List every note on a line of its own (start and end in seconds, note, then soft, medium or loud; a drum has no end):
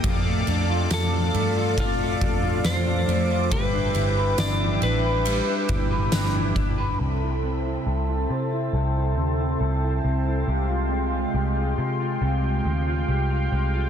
0.00 0.42 F2 loud
0.00 0.13 D#3 medium
0.00 0.13 A#3 medium
0.00 0.13 D#4 medium
0.00 0.13 G4 medium
0.00 3.48 A4 medium
0.00 3.48 D5 medium
0.00 3.48 F5 medium
0.00 6.95 D6 loud
0.00 kick loud
0.00 ride medium
0.04 1.77 F2 medium
0.26 1.33 A3 medium
0.47 0.86 F2 medium
0.47 1.12 D4 medium
0.47 ride soft
0.70 1.55 F4 medium
0.90 1.29 F2 loud
0.90 2.63 F3 medium
0.90 1.82 A4 medium
0.90 snare loud
0.90 ride medium
0.90 tambourine medium
1.13 2.21 D4 medium
1.34 1.92 G2 medium
1.34 1.98 A3 medium
1.34 ride soft
1.56 2.42 F4 medium
1.78 3.61 F2 medium
1.78 2.68 F4 medium
1.78 kick medium
1.78 ride medium
2.00 3.07 A3 medium
2.21 2.60 F2 loud
2.21 2.86 D4 medium
2.21 kick loud
2.21 ride soft
2.43 3.28 F4 medium
2.64 3.03 F2 medium
2.64 3.51 F3 medium
2.64 3.52 C5 loud
2.64 snare loud
2.64 ride medium
2.64 tambourine medium
2.86 3.73 D4 medium
3.08 3.53 F2 loud
3.08 3.60 A3 medium
3.08 ride soft
3.30 3.60 F4 medium
3.51 3.90 G1 loud
3.51 5.25 G3 medium
3.51 6.96 B4 medium
3.51 4.39 B4 loud
3.51 6.96 E5 medium
3.51 6.96 G5 medium
3.51 kick loud
3.51 ride medium
3.73 4.37 D4 medium
3.95 4.33 G1 loud
3.95 4.60 E4 medium
3.95 ride soft
4.17 5.03 B4 medium
4.38 4.77 G1 loud
4.38 4.81 D4 medium
4.38 4.83 D5 loud
4.38 snare loud
4.38 ride medium
4.38 tambourine medium
4.60 5.68 E4 medium
4.82 5.39 A1 medium
4.82 5.46 D4 medium
4.82 6.53 B4 medium
4.82 ride soft
5.04 5.90 B4 medium
5.25 7.89 G3 medium
5.25 ride medium
5.47 6.11 D4 medium
5.69 6.08 G1 medium
5.69 6.34 E4 medium
5.69 kick loud
5.69 ride soft
5.91 6.77 B4 medium
6.12 6.51 G1 medium
6.12 6.54 D4 medium
6.12 snare loud
6.12 ride medium
6.12 tambourine medium
6.34 7.21 E4 medium
6.56 6.94 G1 medium
6.56 7.08 D4 medium
6.56 kick medium
6.56 ride soft
6.78 7.00 B4 medium
6.99 7.76 C2 medium
6.99 8.72 C3 medium
6.99 10.44 A4 medium
6.99 7.85 A4 medium
6.99 10.44 E5 medium
6.99 13.89 G5 medium
6.99 13.89 C6 medium
7.21 7.63 E4 soft
7.43 8.29 C4 medium
7.65 8.07 E4 soft
7.86 8.25 C2 medium
7.86 8.73 A4 medium
8.08 8.50 E4 soft
8.30 8.68 C3 medium
8.30 9.16 C4 medium
8.51 8.94 E4 soft
8.73 9.17 C2 medium
8.73 10.46 C3 medium
8.73 9.59 A4 medium
8.95 9.37 E4 soft
9.17 9.55 D2 medium
9.17 10.03 C4 medium
9.38 9.81 E4 medium
9.60 9.99 C2 medium
9.60 10.47 A4 medium
9.82 10.25 E4 soft
10.04 10.42 C2 medium
10.04 10.90 C4 soft
10.26 10.56 E4 soft
10.47 11.24 C2 medium
10.47 12.20 C3 medium
10.47 13.89 G#3 medium
10.47 11.34 G4 medium
10.47 13.89 F5 medium
10.69 11.12 F4 soft
10.91 11.77 G#3 soft
11.13 11.56 F4 medium
11.34 11.72 C2 medium
11.34 12.22 G4 medium
11.56 12.00 F4 soft
11.78 12.16 C3 medium
11.78 12.64 G#3 soft
12.00 12.43 F4 soft
12.21 12.60 C2 medium
12.21 13.89 C3 medium
12.21 13.08 G4 medium
12.43 12.86 F4 soft
12.65 13.03 D2 medium
12.65 13.51 G#3 medium
12.87 13.30 F4 medium
13.08 13.47 C2 medium
13.08 13.89 G4 medium
13.30 13.73 F4 soft
13.52 13.89 C2 medium
13.52 13.89 G#3 soft
13.74 13.89 F4 soft